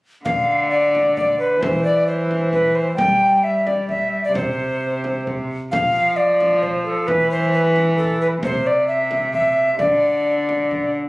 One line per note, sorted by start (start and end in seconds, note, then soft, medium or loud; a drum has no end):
0.25 1.58 D3 medium
0.25 0.68 F5 medium
0.25 frame drum medium
0.70 1.16 D5 medium
0.95 frame drum soft
1.16 1.39 D5 medium
1.16 frame drum medium
1.39 1.62 B4 medium
1.61 2.95 E3 medium
1.61 1.83 C5 medium
1.61 frame drum medium
1.84 2.07 D5 medium
2.07 2.52 C5 medium
2.31 frame drum soft
2.53 2.77 B4 medium
2.53 frame drum medium
2.75 2.96 C5 medium
2.96 4.32 G3 medium
2.96 3.45 G5 loud
2.96 frame drum medium
3.44 3.68 E5 medium
3.67 3.89 D5 medium
3.67 frame drum medium
3.89 4.23 E5 medium
3.89 frame drum soft
4.24 4.34 D5 medium
4.34 5.49 C3 medium
4.34 5.24 C5 medium
4.34 frame drum medium
5.04 frame drum soft
5.27 frame drum soft
5.71 7.10 F3 medium
5.71 6.18 F5 medium
5.71 frame drum medium
6.16 6.64 D5 medium
6.41 frame drum soft
6.62 6.85 C5 medium
6.62 frame drum soft
6.85 7.09 A4 medium
7.07 8.42 E3 medium
7.07 7.30 B4 medium
7.07 frame drum medium
7.31 7.52 C5 medium
7.53 7.97 B4 medium
7.76 frame drum medium
7.98 8.20 A4 medium
7.98 frame drum soft
8.21 8.27 B4 medium
8.43 9.77 C3 medium
8.43 8.68 C5 medium
8.43 frame drum medium
8.67 8.87 D5 medium
8.88 9.33 E5 medium
9.11 frame drum medium
9.33 9.78 E5 medium
9.33 frame drum soft
9.79 10.95 D3 medium
9.79 10.92 D5 medium
9.79 frame drum medium
10.49 frame drum soft
10.71 frame drum soft